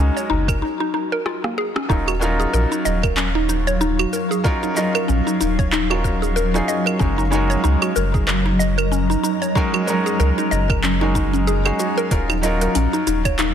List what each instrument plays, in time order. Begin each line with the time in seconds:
Already playing: felt piano G#3 C#4 D#4 F#4 A#4, ambient pad F#4 D#5 A#5
0.00 sub bass C#2, synth pluck C#4
0.17 synth pluck C#5, shaker
0.30 sub bass F#1, synth pluck D#4, udu
0.48 synth pluck A#4, kick, claves, shaker
0.62 synth pluck D#4
0.80 synth pluck D#4
0.94 synth pluck D#4
1.12 synth pluck A#4
1.26 synth pluck F4, cross-stick
1.44 synth pluck A#3, cross-stick
1.58 synth pluck G#4
1.76 synth pluck C#4, cross-stick
1.88 sub bass D#1, felt piano F#3 C#4 D#4 F4 A#4, ambient pad F#3 F5 C#6, synth pluck D#4, kick, shaker
2.08 synth pluck F#4, claves, shaker
2.19 felt piano F#3 C#4 D#4 F4, synth pluck A#4, shaker
2.24 felt piano A#4
2.40 synth pluck G#4, shaker
2.53 sub bass A#1, synth pluck A#4, shaker
2.72 synth pluck D#4, shaker
2.85 sub bass D#1, synth pluck D#5, shaker
3.03 synth pluck A#4, kick, claves, shaker
3.17 synth pluck C#4, clap, shaker
3.35 synth pluck D#4
3.49 synth pluck D#4, shaker
3.67 synth pluck C#5, shaker
3.81 synth pluck D#4, shaker
3.99 synth pluck F#4, claves, shaker
4.13 synth pluck A#4, shaker
4.31 synth pluck G#4, shaker
4.44 felt piano F#3 C#4 D#4 F4 A#4, synth pluck A#4, kick, shaker
4.63 synth pluck D#4, shaker
4.75 felt piano F#3 C#4 D#4 F4, synth pluck D#5, shaker
4.79 felt piano A#4
4.95 synth pluck A#4, claves, shaker
5.08 sub bass A#1, synth pluck C#4, shaker
5.27 synth pluck D#4, shaker
5.41 sub bass D#1, synth pluck D#4, shaker
5.59 synth pluck C#5, kick, shaker
5.72 synth pluck D#4, clap, shaker
5.90 felt piano F#3 C#4 D#4 F4 A#4, synth pluck F#4, claves
6.04 synth pluck A#4, kick, shaker
6.22 synth pluck G#4, shaker
6.36 synth pluck A#4, shaker
6.54 felt piano F#3 C#4 D#4 F4 G#4, synth pluck D#4, shaker
6.68 synth pluck D#5, shaker
6.86 synth pluck A#4, claves, shaker
6.99 sub bass F#1, felt piano G#3 C#4 D#4 F#4 A#4, synth pluck C#4, ambient pad D#5 A#5, kick, shaker
7.18 synth pluck D#4, shaker
7.30 felt piano G#3 C#4 D#4 F#4 A#4, synth pluck D#4, shaker
7.50 synth pluck C#5, shaker
7.64 sub bass C#2, synth pluck D#4, shaker
7.82 synth pluck F#4, claves, shaker
7.96 sub bass F#1, synth pluck A#4, shaker
8.14 synth pluck G#4, kick, shaker
8.27 synth pluck A#4, clap, shaker
8.46 synth pluck D#4
8.59 synth pluck D#5, shaker
8.78 synth pluck A#4, claves, shaker
8.92 synth pluck C#4, shaker
9.10 synth pluck D#4, shaker
9.23 synth pluck D#4, shaker
9.42 synth pluck C#5, shaker
9.55 felt piano G#3 C#4 D#4 F#4 A#4, synth pluck D#4, kick, shaker
9.74 synth pluck F#4, claves, shaker
9.86 felt piano G#3 C#4 D#4 F#4 A#4, synth pluck A#4, shaker
10.06 synth pluck G#4, shaker
10.20 sub bass C#2, synth pluck A#4, shaker
10.38 synth pluck D#4, shaker
10.51 sub bass F#1, synth pluck D#5, shaker
10.70 synth pluck A#4, kick, claves, shaker
10.83 synth pluck C#4, clap, shaker
11.01 felt piano G#3 C#4 D#4 F#4 A#4, synth pluck D#4
11.15 synth pluck D#4, kick, shaker
11.33 synth pluck C#4, shaker
11.47 synth pluck G#4, shaker
11.65 felt piano G#3 C#4 D#4 F#4 G#4, synth pluck G#4, claves, shaker
11.79 synth pluck F#4, shaker
11.98 synth pluck A#4, shaker
12.10 sub bass D#1, felt piano F#3 C#4 D#4 F4 A#4, ambient pad F#3 F5 C#6, synth pluck A#4, kick, open hi-hat, shaker
12.30 synth pluck D#4, claves, shaker
12.41 felt piano F#3 C#4 D#4 F4, synth pluck D#5, open hi-hat, shaker
12.46 felt piano A#4
12.61 synth pluck A#4, open hi-hat, shaker
12.75 sub bass A#1, synth pluck C#4, open hi-hat, shaker
12.93 synth pluck D#4, shaker
13.07 sub bass D#1, synth pluck D#4, open hi-hat, shaker
13.25 synth pluck C#5, kick, open hi-hat, claves, shaker
13.39 synth pluck D#4, clap, open hi-hat, shaker